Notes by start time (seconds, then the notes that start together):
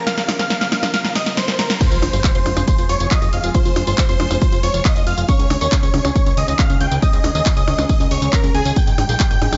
Already playing: C#3 F3 A#3 F4 A#4, riser
0.07 A#4 F5 F6, snare, closed hi-hat, tambourine
0.18 A#1 A#4, snare, tambourine
0.28 A#1 A#4, snare, open hi-hat, percussion blips
0.39 C2 A#4 F5 F6, snare, closed hi-hat, tambourine
0.50 A#4, snare, closed hi-hat, tambourine
0.61 A#1 A#4 F5 F6, snare, tambourine
0.72 A#1 A#4, snare, open hi-hat, percussion blips
0.83 A#1 A#4, snare, closed hi-hat, tambourine, percussion blips
0.94 A#4 F5 F6, snare, closed hi-hat, tambourine
1.04 A#1 A#4, snare, tambourine
1.15 C2 A#4 D#5 D#6, snare, open hi-hat
1.26 A#1 A#4, snare, closed hi-hat, tambourine
1.37 A#4 C5 C6, snare, closed hi-hat, tambourine
1.48 A#1 A#4, snare, tambourine
1.59 A#1 A#4 A#5, snare, open hi-hat
1.70 A#1 A#4, snare, closed hi-hat, tambourine
1.81 C3 F3 G#3 F4 G#4 C5 C6, kick, closed hi-hat, crash, tambourine, impact
1.91 F1 F4, closed hi-hat, tambourine
2.02 F1 F4, open hi-hat, percussion blips
2.13 G1 F4 C5 C6, closed hi-hat, tambourine
2.24 F4, kick, clap, closed hi-hat, tambourine
2.35 F1 F4 C5 C6, closed hi-hat, tambourine
2.46 F1 F4, open hi-hat, percussion blips
2.57 F1 F4, closed hi-hat, tambourine, percussion blips
2.68 F4 C5 C6, kick, closed hi-hat, tambourine
2.78 F1 F4, closed hi-hat, tambourine
2.89 F1 F4 C#5 C#6, open hi-hat
3.00 F1 F4, closed hi-hat, tambourine
3.11 F4 D#5 D#6, kick, clap, closed hi-hat, tambourine
3.22 F1 F4, closed hi-hat, tambourine
3.33 F1 F4 F5 F6, open hi-hat
3.44 F1 F4, closed hi-hat, tambourine
3.54 F4 C5 C6, kick, closed hi-hat, tambourine
3.65 F1 F4, closed hi-hat, tambourine
3.76 F1 F4, open hi-hat, percussion blips
3.87 G1 F4 C5 C6, closed hi-hat, tambourine
3.98 F4, kick, clap, closed hi-hat, tambourine
4.09 F1 F4 C5 C6, closed hi-hat, tambourine
4.20 F1 F4, open hi-hat, percussion blips
4.31 F1 F4, closed hi-hat, tambourine, percussion blips
4.42 F4 C5 C6, kick, closed hi-hat, tambourine
4.52 F1 F4, closed hi-hat, tambourine
4.63 F1 F4 C#5 C#6, open hi-hat
4.74 F1 F4, closed hi-hat, tambourine
4.85 F4 D#5 D#6, kick, clap, closed hi-hat, tambourine
4.96 F1 F4, closed hi-hat, tambourine
5.07 F1 F4 F5 F6, open hi-hat
5.17 F1 F4, closed hi-hat, tambourine
5.28 C#3 D#3 G#3 C#4 D#4 G#4 C#5 C#6, kick, closed hi-hat, tambourine
5.39 C#2 C#4, closed hi-hat, tambourine
5.50 C#2 C#4, open hi-hat, percussion blips
5.61 D#2 C#4 C#5 C#6, closed hi-hat, tambourine
5.72 C#4, kick, clap, closed hi-hat, tambourine
5.83 C#2 C#4 C#5 C#6, closed hi-hat, tambourine
5.94 C#2 C#4, open hi-hat, percussion blips
6.05 C#2 C#4, closed hi-hat, tambourine, percussion blips
6.16 C#4 C#5 C#6, kick, closed hi-hat, tambourine
6.26 C#2 C#4, closed hi-hat, tambourine
6.37 C#2 C#4 D#5 D#6, open hi-hat
6.48 C#2 C#4, closed hi-hat, tambourine
6.59 C#4 F5 F6, kick, clap, closed hi-hat, tambourine
6.70 C#2 C#4, closed hi-hat, tambourine
6.81 C#2 C#4 G5 G6, open hi-hat
6.91 C#2 C#4, closed hi-hat, tambourine
7.02 C#4 D#5 D#6, kick, closed hi-hat, tambourine
7.13 C#2 C#4, closed hi-hat, tambourine
7.24 C#2 C#4, open hi-hat, percussion blips
7.35 D#2 C#4 D#5 D#6, closed hi-hat, tambourine
7.46 C#4, kick, clap, closed hi-hat, tambourine
7.57 C#2 C#4 D#5 D#6, closed hi-hat, tambourine
7.67 C#2 C#4, open hi-hat, percussion blips
7.78 C#2 C#4, closed hi-hat, tambourine, percussion blips
7.89 C#4 D#5 D#6, kick, closed hi-hat, tambourine
8.00 C#2 C#4, closed hi-hat, tambourine
8.11 C#2 C#4 C#5 C#6, open hi-hat
8.22 C#2 C#4, closed hi-hat, tambourine
8.33 C#4 A#4 A#5, kick, clap, closed hi-hat, tambourine
8.44 C#2 C#4, closed hi-hat, tambourine
8.54 C#2 C#4 G#4 G#5, open hi-hat
8.65 C#2 C#4, closed hi-hat, tambourine
8.76 C3 G3 G4 G#4 G5 G6, kick, closed hi-hat, tambourine
8.87 G#1 G#4, closed hi-hat, tambourine
8.98 G#1 G#4, open hi-hat, percussion blips
9.09 A#1 G#4 G5 G6, closed hi-hat, tambourine
9.20 G#4, kick, clap, closed hi-hat, tambourine
9.31 G#1 G#4 G5 G6, closed hi-hat, tambourine
9.42 G#1 G#4, open hi-hat, percussion blips
9.52 G#1 G#4, closed hi-hat, tambourine, percussion blips